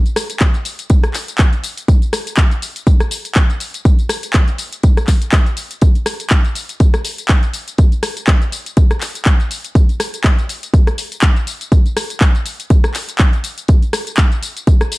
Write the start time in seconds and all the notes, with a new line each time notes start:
0.06 closed hi-hat, tambourine
0.16 cross-stick, open hi-hat, tambourine
0.30 closed hi-hat, tambourine
0.40 kick, clap, closed hi-hat, tambourine
0.54 closed hi-hat, tambourine
0.65 open hi-hat, tambourine
0.79 closed hi-hat, tambourine
0.90 kick, closed hi-hat, tambourine
1.04 cross-stick, closed hi-hat, tambourine
1.14 clap, open hi-hat, tambourine
1.28 closed hi-hat, tambourine
1.38 kick, clap, closed hi-hat, tambourine
1.53 closed hi-hat, tambourine
1.64 open hi-hat, tambourine
1.77 closed hi-hat, tambourine
1.88 kick, closed hi-hat, tambourine
2.02 closed hi-hat, tambourine
2.13 cross-stick, open hi-hat, tambourine
2.27 closed hi-hat, tambourine
2.37 kick, clap, closed hi-hat, tambourine
2.51 closed hi-hat, tambourine
2.62 open hi-hat, tambourine
2.76 closed hi-hat, tambourine
2.87 kick, closed hi-hat, tambourine
3.00 cross-stick, closed hi-hat, tambourine
3.11 open hi-hat, tambourine
3.25 closed hi-hat, tambourine
3.35 kick, clap, closed hi-hat, tambourine
3.50 closed hi-hat, tambourine
3.60 open hi-hat, tambourine
3.74 closed hi-hat, tambourine
3.85 kick, closed hi-hat, tambourine
3.99 closed hi-hat, tambourine
4.09 cross-stick, open hi-hat, tambourine
4.23 closed hi-hat, tambourine
4.33 kick, clap, closed hi-hat, tambourine
4.48 closed hi-hat, tambourine
4.58 open hi-hat, tambourine
4.73 closed hi-hat, tambourine
4.83 kick, closed hi-hat, tambourine
4.97 cross-stick, closed hi-hat, tambourine
5.07 kick, clap, open hi-hat, tambourine
5.22 closed hi-hat, tambourine
5.32 kick, clap, closed hi-hat, tambourine
5.46 closed hi-hat, tambourine
5.57 open hi-hat, tambourine
5.71 closed hi-hat, tambourine
5.82 kick, closed hi-hat, tambourine
5.95 closed hi-hat, tambourine
6.06 cross-stick, open hi-hat, tambourine
6.20 closed hi-hat, tambourine
6.30 kick, clap, closed hi-hat, tambourine
6.45 closed hi-hat, tambourine
6.55 open hi-hat, tambourine
6.69 closed hi-hat, tambourine
6.80 kick, closed hi-hat, tambourine
6.94 cross-stick, closed hi-hat, tambourine
7.05 open hi-hat, tambourine
7.18 closed hi-hat, tambourine
7.29 kick, clap, closed hi-hat, tambourine
7.43 closed hi-hat, tambourine
7.54 open hi-hat, tambourine
7.68 closed hi-hat, tambourine
7.78 kick, closed hi-hat, tambourine
7.92 closed hi-hat, tambourine
8.03 cross-stick, open hi-hat, tambourine
8.17 closed hi-hat, tambourine
8.27 kick, clap, closed hi-hat, tambourine
8.42 closed hi-hat, tambourine
8.52 open hi-hat, tambourine
8.66 closed hi-hat, tambourine
8.77 kick, closed hi-hat, tambourine
8.91 cross-stick, closed hi-hat, tambourine
9.01 clap, open hi-hat, tambourine
9.15 closed hi-hat, tambourine
9.25 kick, clap, closed hi-hat, tambourine
9.40 closed hi-hat, tambourine
9.51 open hi-hat, tambourine
9.64 closed hi-hat, tambourine
9.75 kick, closed hi-hat, tambourine
9.89 closed hi-hat, tambourine
10.00 cross-stick, open hi-hat, tambourine
10.14 closed hi-hat, tambourine
10.24 kick, clap, closed hi-hat, tambourine
10.39 closed hi-hat, tambourine
10.49 open hi-hat, tambourine
10.63 closed hi-hat, tambourine
10.74 kick, closed hi-hat, tambourine
10.87 cross-stick, closed hi-hat, tambourine
10.98 open hi-hat, tambourine
11.12 closed hi-hat, tambourine
11.22 kick, clap, closed hi-hat, tambourine
11.36 closed hi-hat, tambourine
11.47 open hi-hat, tambourine
11.61 closed hi-hat, tambourine
11.72 kick, closed hi-hat, tambourine
11.86 closed hi-hat, tambourine
11.97 cross-stick, open hi-hat, tambourine
12.10 closed hi-hat, tambourine
12.21 kick, clap, closed hi-hat, tambourine
12.35 closed hi-hat, tambourine
12.46 open hi-hat, tambourine
12.60 closed hi-hat, tambourine
12.70 kick, closed hi-hat, tambourine
12.84 cross-stick, closed hi-hat, tambourine
12.94 clap, open hi-hat, tambourine
13.09 closed hi-hat, tambourine
13.19 kick, clap, closed hi-hat, tambourine
13.33 closed hi-hat, tambourine
13.44 open hi-hat, tambourine
13.58 closed hi-hat, tambourine
13.68 kick, closed hi-hat, tambourine
13.82 closed hi-hat, tambourine
13.93 cross-stick, open hi-hat, tambourine
14.07 closed hi-hat, tambourine
14.17 kick, clap, closed hi-hat, tambourine
14.32 closed hi-hat, tambourine
14.43 open hi-hat, tambourine
14.57 closed hi-hat, tambourine
14.67 kick, closed hi-hat, tambourine
14.81 cross-stick, closed hi-hat, tambourine
14.92 open hi-hat, tambourine